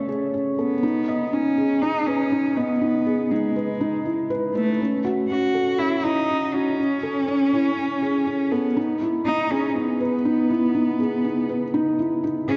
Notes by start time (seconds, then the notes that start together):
Already playing: A3 C#4 A4 C#5
0.09 G#4
0.34 C#4
0.58 B3 A4
0.83 D#4
1.08 D#5
1.33 C#4 D#4
1.58 G#4
1.82 D#4
2.07 C#4 B4
2.32 D#4
2.56 B3 D#5
2.81 D#4
3.07 G#4
3.31 G#3 D#4
3.56 B4
3.81 D#4
4.05 E4
4.30 B4
4.55 A3 B4
4.80 C#4
5.05 F#4
5.29 C#4 F#4
5.55 A4
5.79 C#4 E4
6.03 D#4 E4
6.29 C#4
6.53 C#4 F#4
6.78 C#4
7.03 A4
7.28 C#4
7.53 E4
7.77 C#4
8.02 G#4
8.27 C#4
8.52 B3 A4
8.77 D#4
9.02 E4
9.26 D#4
9.51 C#4 G#4
9.69 C#4
9.75 B3 D#4
10.00 B4
10.25 D#4
10.50 E4
10.75 D#4
11.00 G#4
11.25 D#4
11.49 B4
11.74 D#4
11.99 E4
12.24 D#4
12.48 C#4 G#4